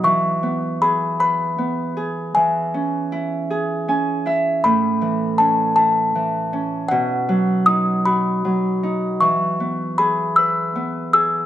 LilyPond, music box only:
\new Staff \with { instrumentName = "Music box" } { \time 6/8 \key e \major \tempo 4. = 52 cis'''4 b''8 b''4. | gis''2 r4 | b''4 a''8 a''4. | fis''4 dis'''8 b''4 r8 |
cis'''4 b''8 e'''4 e'''8 | }